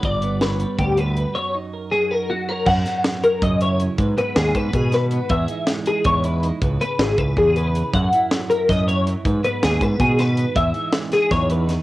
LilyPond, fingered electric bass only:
\new Staff \with { instrumentName = "Fingered electric bass" } { \clef bass \time 7/8 \key fis \mixolydian \tempo 4 = 160 g,,2 d,4. | r2. r8 | fis,8 r4. fis,4. | gis,8 r8 dis,8 gis,8 b,4. |
e,8 r4. e,4. | cis,8 r8 gis,,8 cis,8 e,4. | fis,8 r4. fis,4. | gis,8 r8 dis,8 gis,8 b,4. |
e,8 r4. e,4. | }